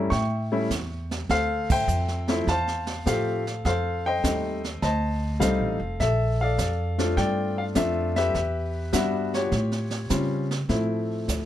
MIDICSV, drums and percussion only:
0, 0, Header, 1, 2, 480
1, 0, Start_track
1, 0, Key_signature, -1, "minor"
1, 0, Tempo, 587659
1, 1058, Time_signature, 4, 2, 24, 8
1, 9356, End_track
2, 0, Start_track
2, 0, Title_t, "Drums"
2, 95, Note_on_c, 9, 25, 45
2, 95, Note_on_c, 9, 36, 22
2, 95, Note_on_c, 9, 38, 46
2, 177, Note_off_c, 9, 36, 0
2, 177, Note_off_c, 9, 38, 0
2, 575, Note_on_c, 9, 44, 62
2, 577, Note_on_c, 9, 36, 26
2, 577, Note_on_c, 9, 38, 59
2, 657, Note_off_c, 9, 44, 0
2, 658, Note_off_c, 9, 36, 0
2, 659, Note_off_c, 9, 38, 0
2, 908, Note_on_c, 9, 38, 66
2, 990, Note_off_c, 9, 38, 0
2, 1056, Note_off_c, 9, 25, 0
2, 1056, Note_on_c, 9, 25, 45
2, 1056, Note_on_c, 9, 38, 46
2, 1057, Note_on_c, 9, 36, 18
2, 1138, Note_off_c, 9, 38, 0
2, 1139, Note_off_c, 9, 36, 0
2, 1386, Note_on_c, 9, 49, 84
2, 1389, Note_on_c, 9, 36, 82
2, 1467, Note_off_c, 9, 49, 0
2, 1470, Note_off_c, 9, 36, 0
2, 1536, Note_on_c, 9, 44, 51
2, 1618, Note_off_c, 9, 44, 0
2, 1700, Note_on_c, 9, 38, 30
2, 1781, Note_off_c, 9, 38, 0
2, 1861, Note_on_c, 9, 38, 48
2, 1871, Note_off_c, 9, 38, 0
2, 1871, Note_on_c, 9, 38, 44
2, 1952, Note_off_c, 9, 38, 0
2, 2020, Note_on_c, 9, 36, 22
2, 2022, Note_off_c, 9, 25, 0
2, 2022, Note_on_c, 9, 25, 54
2, 2022, Note_on_c, 9, 38, 45
2, 2102, Note_off_c, 9, 36, 0
2, 2103, Note_off_c, 9, 38, 0
2, 2184, Note_on_c, 9, 38, 27
2, 2266, Note_off_c, 9, 38, 0
2, 2343, Note_on_c, 9, 38, 51
2, 2424, Note_off_c, 9, 38, 0
2, 2502, Note_on_c, 9, 36, 20
2, 2503, Note_on_c, 9, 44, 61
2, 2505, Note_on_c, 9, 38, 58
2, 2584, Note_off_c, 9, 36, 0
2, 2585, Note_off_c, 9, 44, 0
2, 2587, Note_off_c, 9, 38, 0
2, 2835, Note_on_c, 9, 38, 48
2, 2917, Note_off_c, 9, 38, 0
2, 2982, Note_on_c, 9, 36, 29
2, 2984, Note_off_c, 9, 25, 0
2, 2984, Note_on_c, 9, 25, 44
2, 2984, Note_on_c, 9, 38, 48
2, 3064, Note_off_c, 9, 36, 0
2, 3065, Note_off_c, 9, 38, 0
2, 3462, Note_on_c, 9, 36, 27
2, 3464, Note_on_c, 9, 44, 64
2, 3466, Note_on_c, 9, 38, 74
2, 3544, Note_off_c, 9, 36, 0
2, 3546, Note_off_c, 9, 44, 0
2, 3548, Note_off_c, 9, 38, 0
2, 3792, Note_on_c, 9, 38, 44
2, 3874, Note_off_c, 9, 38, 0
2, 3939, Note_off_c, 9, 25, 0
2, 3939, Note_on_c, 9, 25, 47
2, 3939, Note_on_c, 9, 38, 45
2, 3941, Note_on_c, 9, 36, 22
2, 4021, Note_off_c, 9, 38, 0
2, 4023, Note_off_c, 9, 36, 0
2, 4420, Note_on_c, 9, 36, 24
2, 4421, Note_on_c, 9, 44, 71
2, 4422, Note_on_c, 9, 38, 70
2, 4502, Note_off_c, 9, 36, 0
2, 4503, Note_off_c, 9, 44, 0
2, 4504, Note_off_c, 9, 38, 0
2, 4900, Note_on_c, 9, 36, 26
2, 4903, Note_off_c, 9, 25, 0
2, 4903, Note_on_c, 9, 25, 47
2, 4903, Note_on_c, 9, 38, 43
2, 4982, Note_off_c, 9, 36, 0
2, 4985, Note_off_c, 9, 38, 0
2, 5378, Note_on_c, 9, 44, 53
2, 5379, Note_on_c, 9, 36, 22
2, 5379, Note_on_c, 9, 38, 70
2, 5459, Note_off_c, 9, 44, 0
2, 5461, Note_off_c, 9, 36, 0
2, 5461, Note_off_c, 9, 38, 0
2, 5707, Note_on_c, 9, 38, 46
2, 5788, Note_off_c, 9, 38, 0
2, 5857, Note_on_c, 9, 36, 18
2, 5858, Note_off_c, 9, 25, 0
2, 5858, Note_on_c, 9, 25, 44
2, 5858, Note_on_c, 9, 38, 43
2, 5939, Note_off_c, 9, 36, 0
2, 5940, Note_off_c, 9, 38, 0
2, 6330, Note_on_c, 9, 44, 53
2, 6332, Note_on_c, 9, 38, 64
2, 6336, Note_on_c, 9, 36, 20
2, 6412, Note_off_c, 9, 44, 0
2, 6414, Note_off_c, 9, 38, 0
2, 6417, Note_off_c, 9, 36, 0
2, 6666, Note_on_c, 9, 38, 43
2, 6747, Note_off_c, 9, 38, 0
2, 6817, Note_on_c, 9, 36, 27
2, 6818, Note_off_c, 9, 25, 0
2, 6818, Note_on_c, 9, 25, 55
2, 6818, Note_on_c, 9, 38, 44
2, 6899, Note_off_c, 9, 36, 0
2, 6899, Note_off_c, 9, 38, 0
2, 7293, Note_on_c, 9, 44, 68
2, 7294, Note_on_c, 9, 38, 74
2, 7297, Note_on_c, 9, 36, 20
2, 7374, Note_off_c, 9, 44, 0
2, 7376, Note_off_c, 9, 38, 0
2, 7378, Note_off_c, 9, 36, 0
2, 7629, Note_on_c, 9, 38, 50
2, 7710, Note_off_c, 9, 38, 0
2, 7774, Note_off_c, 9, 25, 0
2, 7774, Note_on_c, 9, 25, 47
2, 7774, Note_on_c, 9, 38, 45
2, 7776, Note_on_c, 9, 36, 25
2, 7856, Note_off_c, 9, 38, 0
2, 7858, Note_off_c, 9, 36, 0
2, 7935, Note_on_c, 9, 38, 30
2, 8016, Note_off_c, 9, 38, 0
2, 8091, Note_on_c, 9, 38, 49
2, 8173, Note_off_c, 9, 38, 0
2, 8248, Note_on_c, 9, 44, 69
2, 8249, Note_on_c, 9, 38, 67
2, 8254, Note_on_c, 9, 36, 18
2, 8329, Note_off_c, 9, 44, 0
2, 8331, Note_off_c, 9, 38, 0
2, 8336, Note_off_c, 9, 36, 0
2, 8583, Note_on_c, 9, 38, 49
2, 8665, Note_off_c, 9, 38, 0
2, 8732, Note_off_c, 9, 25, 0
2, 8732, Note_on_c, 9, 25, 46
2, 8732, Note_on_c, 9, 38, 44
2, 8734, Note_on_c, 9, 36, 18
2, 8814, Note_off_c, 9, 38, 0
2, 8816, Note_off_c, 9, 36, 0
2, 9216, Note_on_c, 9, 36, 27
2, 9217, Note_on_c, 9, 44, 65
2, 9218, Note_on_c, 9, 38, 64
2, 9298, Note_off_c, 9, 36, 0
2, 9298, Note_off_c, 9, 44, 0
2, 9300, Note_off_c, 9, 38, 0
2, 9356, Note_off_c, 9, 25, 0
2, 9356, End_track
0, 0, End_of_file